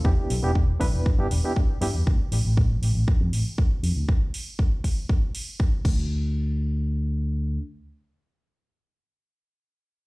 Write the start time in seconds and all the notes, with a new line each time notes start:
0.04 E2 B3 D4 E4 G4, kick
0.30 B1, open hi-hat
0.43 E1 B3 D4 E4 G4
0.55 kick
0.80 B1 B3 D4 E4 B4, kick, open hi-hat
0.93 E1
1.06 kick
1.19 G2 B3 D4 E4 G4
1.30 E1, open hi-hat
1.44 B3 D4 E4 G4
1.56 kick
1.81 G2 B3 D4 E4 G4, open hi-hat
1.95 E2
2.07 D2, kick
2.32 A1, open hi-hat
2.45 A1
2.57 kick
2.82 A1, open hi-hat
2.95 A1
3.08 muted fingered electric bass stroke, kick
3.21 F2
3.32 A1, open hi-hat
3.58 kick
3.83 F2, open hi-hat
3.96 D2
4.09 kick
4.34 open hi-hat
4.59 kick
4.84 kick, open hi-hat
5.09 kick
5.35 open hi-hat
5.60 kick
5.85 D2, kick, crash